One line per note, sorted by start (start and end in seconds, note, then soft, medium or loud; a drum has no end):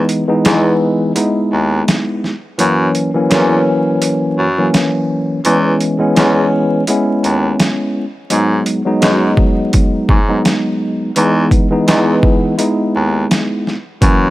0.00 0.24 E3 medium
0.00 0.24 G#3 medium
0.00 0.25 B3 medium
0.00 0.25 D#4 loud
0.09 closed hi-hat soft
0.28 0.44 E3 medium
0.28 0.44 G#3 medium
0.28 0.45 B3 medium
0.28 0.46 D#4 medium
0.45 0.75 E2 loud
0.45 1.11 E3 loud
0.45 1.11 G#3 medium
0.45 1.12 B3 medium
0.45 1.12 D#4 loud
0.45 snare loud
0.45 closed hi-hat medium
1.15 2.32 G#3 medium
1.15 2.32 B3 medium
1.15 2.32 D#4 loud
1.15 2.32 E4 medium
1.15 closed hi-hat loud
1.52 1.82 D#2 loud
1.88 snare loud
1.88 closed hi-hat medium
2.24 snare soft
2.58 2.89 F#2 loud
2.58 3.09 E3 loud
2.58 3.10 F#3 medium
2.58 3.10 A#3 medium
2.58 3.10 C#4 loud
2.58 closed hi-hat loud
2.95 closed hi-hat medium
3.14 3.29 E3 loud
3.14 3.30 F#3 medium
3.14 3.30 A#3 medium
3.14 3.31 C#4 medium
3.30 3.61 E2 loud
3.30 4.46 E3 loud
3.30 4.46 F#3 medium
3.30 4.47 A#3 medium
3.30 4.47 C#4 loud
3.30 snare loud
3.30 closed hi-hat medium
4.02 closed hi-hat loud
4.38 4.68 F#2 medium
4.58 5.39 E3 medium
4.58 5.39 F#3 medium
4.58 5.39 A#3 medium
4.58 5.39 C#4 loud
4.74 snare loud
4.74 closed hi-hat medium
5.45 5.75 E2 loud
5.45 5.96 E3 loud
5.45 5.96 G#3 medium
5.45 5.97 B3 medium
5.45 5.97 C#4 loud
5.45 closed hi-hat medium
5.80 closed hi-hat soft
5.99 6.14 E3 medium
5.99 6.15 G#3 medium
5.99 6.16 B3 medium
5.99 6.16 C#4 loud
6.15 6.46 E2 loud
6.15 6.82 E3 loud
6.15 6.82 G#3 medium
6.15 6.83 B3 medium
6.15 6.83 C#4 loud
6.15 snare loud
6.15 closed hi-hat medium
6.87 8.04 G#3 medium
6.87 8.04 B3 medium
6.87 8.05 C#4 loud
6.87 8.04 E4 medium
6.87 closed hi-hat loud
7.24 7.53 D#2 medium
7.24 closed hi-hat medium
7.60 snare loud
7.60 closed hi-hat medium
8.30 8.61 G#2 loud
8.30 8.81 F#3 loud
8.30 8.81 G#3 medium
8.30 8.81 B3 medium
8.30 8.82 D#4 loud
8.30 closed hi-hat medium
8.66 closed hi-hat medium
8.85 9.00 F#3 loud
8.85 9.00 G#3 medium
8.85 9.01 B3 medium
8.85 9.02 D#4 loud
9.01 9.32 F#2 loud
9.01 10.17 F#3 medium
9.01 10.18 G#3 medium
9.01 10.18 B3 medium
9.01 10.18 D#4 loud
9.01 snare loud
9.01 closed hi-hat medium
9.37 kick loud
9.73 kick medium
9.73 closed hi-hat medium
10.09 10.39 G#2 medium
10.09 kick medium
10.28 11.09 F#3 medium
10.28 11.10 G#3 medium
10.28 11.10 B3 medium
10.28 11.10 D#4 loud
10.45 snare loud
10.45 closed hi-hat medium
11.16 11.46 E2 loud
11.16 11.67 E3 medium
11.16 11.67 G#3 medium
11.16 11.67 B3 medium
11.16 11.68 D#4 loud
11.16 closed hi-hat medium
11.51 kick medium
11.51 closed hi-hat soft
11.70 11.86 E3 medium
11.70 11.87 G#3 medium
11.70 11.88 B3 medium
11.70 11.88 D#4 medium
11.88 12.18 E2 loud
11.88 12.54 E3 loud
11.88 12.54 G#3 medium
11.88 12.54 B3 medium
11.88 12.55 D#4 loud
11.88 snare loud
11.88 closed hi-hat medium
12.23 kick medium
12.58 13.74 G#3 medium
12.58 13.75 B3 medium
12.58 13.75 D#4 loud
12.58 13.74 E4 medium
12.58 closed hi-hat medium
12.95 13.25 D#2 loud
13.31 snare loud
13.31 closed hi-hat medium
13.67 snare soft
14.01 14.30 F#2 loud
14.01 14.30 E3 loud
14.01 14.30 F#3 medium
14.01 14.30 A#3 medium
14.01 14.30 C#4 loud
14.01 kick loud
14.01 closed hi-hat medium